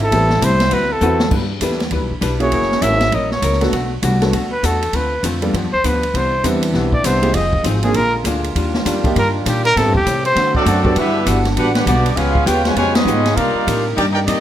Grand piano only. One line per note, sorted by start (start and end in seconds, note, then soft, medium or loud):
0.12 0.28 B3 medium
0.12 0.29 C4 medium
0.12 0.29 E4 medium
0.12 0.29 G4 medium
0.12 0.29 A4 medium
1.02 1.19 B3 medium
1.02 1.19 C4 medium
1.02 1.19 E4 medium
1.02 1.19 F#4 medium
1.02 1.19 A4 medium
1.62 1.78 B3 medium
1.62 1.79 D4 medium
1.62 1.78 E4 medium
1.62 1.79 G4 medium
1.62 1.79 A4 medium
2.40 2.80 A#3 medium
2.40 2.80 C#4 medium
2.40 2.80 E4 medium
2.40 2.80 F#4 medium
2.40 2.80 G#4 medium
3.61 3.72 A3 medium
3.61 3.72 B3 medium
3.61 3.72 D4 medium
3.61 3.72 F#4 medium
3.61 3.72 A4 medium
4.22 4.32 A3 medium
4.22 4.32 B3 medium
4.22 4.32 D4 medium
4.22 4.32 F#4 medium
4.22 4.32 A4 medium
5.41 5.53 G3 medium
5.41 5.52 B3 medium
5.41 5.52 D4 medium
5.41 5.53 F4 medium
5.41 5.53 A4 medium
6.44 6.89 G3 medium
6.44 6.89 C4 medium
6.44 6.89 D4 medium
6.44 6.89 E4 medium
6.44 6.89 B4 medium
7.22 7.33 G#3 medium
7.22 7.33 C4 medium
7.22 7.33 D#4 medium
7.22 7.33 F4 medium
7.22 7.33 G4 medium
7.83 7.94 A#3 medium
7.83 7.94 C4 medium
7.83 7.94 D4 medium
7.83 7.94 F4 medium
7.83 7.94 G#4 medium
9.05 9.15 A#3 medium
9.05 9.15 D4 medium
9.05 9.15 D#4 medium
9.05 9.15 F4 medium
9.05 9.15 G4 medium
9.77 9.93 B3 medium
9.77 9.93 C4 medium
9.77 9.93 E4 medium
9.77 9.93 G4 medium
9.77 9.93 A4 medium
10.85 10.95 B3 medium
10.85 10.95 D4 medium
10.85 10.95 F#4 medium
10.85 10.96 G4 medium
10.85 10.96 A4 medium